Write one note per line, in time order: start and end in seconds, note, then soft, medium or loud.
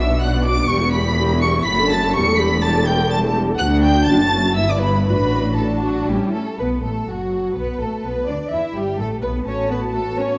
0.00 0.67 B1 medium
0.00 0.67 B2 medium
0.00 0.11 F#4 medium
0.00 0.22 E5 medium
0.00 0.22 E6 medium
0.10 0.23 B3 medium
0.10 0.21 D4 medium
0.22 0.33 D4 medium
0.22 0.33 F#4 medium
0.22 0.45 F#5 medium
0.22 0.46 F#6 medium
0.34 0.46 B3 medium
0.34 0.44 D4 medium
0.45 0.57 D4 medium
0.45 0.58 F#4 medium
0.45 0.69 D6 loud
0.45 0.70 D7 loud
0.58 0.70 B3 medium
0.58 0.70 D4 medium
0.69 1.65 E1 medium
0.69 1.65 E2 medium
0.69 0.81 G3 medium
0.69 0.81 G4 medium
0.69 0.94 C#6 loud
0.69 0.94 C#7 loud
0.81 0.94 B3 medium
0.81 0.94 E4 medium
0.93 1.07 G3 medium
0.93 1.07 G4 medium
0.93 1.42 B5 loud
0.93 1.41 B6 loud
1.07 1.19 B3 medium
1.07 1.19 E4 medium
1.19 1.30 G3 medium
1.19 1.30 G4 medium
1.32 1.43 B3 medium
1.32 1.43 E4 medium
1.42 1.55 G3 medium
1.42 1.55 G4 medium
1.42 1.66 C#6 loud
1.42 1.50 C#7 loud
1.56 1.68 B3 medium
1.56 1.67 E4 medium
1.66 2.14 F#1 medium
1.66 2.15 F#2 medium
1.66 1.79 A3 medium
1.66 1.79 F#4 medium
1.66 1.91 B5 loud
1.66 1.90 B6 loud
1.80 1.92 D4 medium
1.80 1.92 A4 medium
1.91 2.03 A3 medium
1.91 2.03 F#4 medium
1.91 2.16 A5 loud
1.91 2.15 A6 loud
2.03 2.15 D4 medium
2.03 2.15 A4 medium
2.14 3.60 E1 loud
2.14 3.60 E2 medium
2.14 2.27 G3 medium
2.14 2.27 G4 medium
2.14 2.40 C#6 loud
2.14 2.39 C#7 loud
2.27 2.40 A3 medium
2.27 2.40 A4 medium
2.38 2.52 G3 medium
2.38 2.52 G4 medium
2.38 2.63 B5 medium
2.38 2.63 B6 loud
2.51 2.64 A3 medium
2.51 2.64 A4 medium
2.62 2.75 G3 medium
2.62 2.75 G4 medium
2.62 2.87 A5 medium
2.62 2.88 A6 loud
2.76 2.88 A3 medium
2.76 2.88 A4 medium
2.86 3.00 G3 medium
2.86 3.00 G4 medium
2.86 3.11 G5 medium
2.86 3.11 G6 loud
3.00 3.12 A3 medium
3.00 3.12 A4 medium
3.11 3.24 G3 medium
3.11 3.24 G4 medium
3.11 3.35 A5 medium
3.11 3.19 A6 loud
3.24 3.36 A3 medium
3.24 3.36 A4 medium
3.37 3.49 G3 medium
3.37 3.49 G4 medium
3.50 3.61 A3 medium
3.50 3.61 A4 medium
3.58 4.05 D2 medium
3.58 3.82 F#5 loud
3.58 3.67 F#6 loud
3.62 4.07 D4 medium
3.62 4.07 F#4 medium
3.83 4.08 G5 medium
3.83 4.08 G6 loud
4.07 4.57 F#1 medium
4.07 4.58 F#2 medium
4.07 4.18 D4 medium
4.07 4.57 F#4 medium
4.07 4.56 A5 medium
4.07 4.57 A6 loud
4.35 4.43 C#4 medium
4.56 5.07 G1 medium
4.56 5.07 G2 medium
4.56 5.07 B3 medium
4.56 5.07 E4 medium
4.56 4.69 E5 medium
4.56 4.69 E6 loud
4.70 4.83 D5 medium
4.70 4.83 D6 medium
4.81 5.06 B4 medium
4.81 5.06 B5 medium
5.06 6.06 A1 medium
5.06 5.83 A2 medium
5.06 5.57 D4 medium
5.06 5.57 F#4 medium
5.06 5.57 B4 medium
5.06 5.57 B5 loud
5.57 6.08 D4 medium
5.57 6.08 F#4 medium
5.57 5.83 A4 medium
5.57 6.33 A5 medium
5.83 6.07 F#3 medium
5.83 6.07 F#4 medium
6.07 6.15 A1 medium
6.07 6.16 A2 medium
6.07 6.34 G3 medium
6.07 6.39 C#4 medium
6.07 6.39 E4 medium
6.07 6.34 G4 medium
6.34 6.42 A3 medium
6.34 6.58 A4 medium
6.58 6.81 B1 medium
6.58 6.83 B3 medium
6.58 6.82 B3 medium
6.58 6.81 B4 medium
6.58 6.69 B4 medium
6.82 7.07 A1 soft
6.82 7.07 A3 soft
6.82 6.92 A3 soft
6.82 7.07 A4 soft
6.82 7.07 A4 medium
7.07 7.55 F#1 soft
7.07 7.54 F#3 soft
7.07 7.55 F#3 medium
7.07 7.54 F#4 medium
7.07 7.57 F#4 medium
7.55 7.63 B1 medium
7.55 7.79 B3 medium
7.55 7.80 B3 medium
7.55 7.79 B4 medium
7.78 7.86 A1 soft
7.78 8.04 A3 soft
7.78 8.03 A3 soft
7.78 8.03 A4 soft
7.78 8.04 A4 medium
8.02 8.26 B1 medium
8.02 8.27 B3 medium
8.02 8.12 B3 medium
8.02 8.27 B4 medium
8.26 8.34 D2 medium
8.26 8.51 D4 medium
8.26 8.36 D4 medium
8.26 8.34 D5 medium
8.26 8.51 D5 medium
8.50 8.58 E2 soft
8.50 8.74 E4 medium
8.50 8.75 E4 medium
8.50 8.74 E5 soft
8.50 8.74 E5 medium
8.74 8.97 G1 medium
8.74 8.98 G3 medium
8.74 8.98 G4 medium
8.97 9.21 A1 medium
8.97 9.21 A3 medium
8.97 9.22 A3 medium
8.97 9.22 A4 medium
8.97 9.07 A4 medium
9.21 9.45 B1 medium
9.21 9.45 B3 medium
9.21 9.46 B3 medium
9.21 9.30 B4 medium
9.21 9.46 B4 medium
9.45 10.37 A1 medium
9.45 9.90 A3 soft
9.45 9.70 C#4 medium
9.45 10.37 F#4 medium
9.45 9.70 C#5 medium
9.45 10.38 A5 medium
9.70 9.94 B3 medium
9.70 9.78 B4 medium
9.93 10.03 A3 medium
9.93 10.38 B3 soft
9.93 10.17 A4 medium
10.18 10.38 C#4 medium
10.18 10.38 C#5 medium